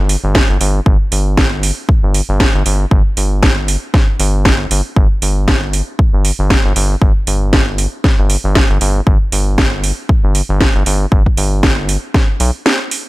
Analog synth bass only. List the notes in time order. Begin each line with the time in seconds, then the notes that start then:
0.00 G1
0.24 G1
0.49 G1
0.60 G1
0.86 G1
1.12 G1
2.03 G1
2.29 G1
2.55 G1
2.66 G1
2.91 G1
3.17 G1
4.20 G1
4.71 G1
4.96 G1
5.22 G1
6.13 G1
6.39 G1
6.65 G1
6.76 G1
7.02 G1
7.27 G1
8.19 G1
8.44 G1
8.70 G1
8.81 G1
9.07 G1
9.32 G1
10.24 G1
10.49 G1
10.75 G1
10.86 G1
11.12 G1
11.37 G1
12.40 B1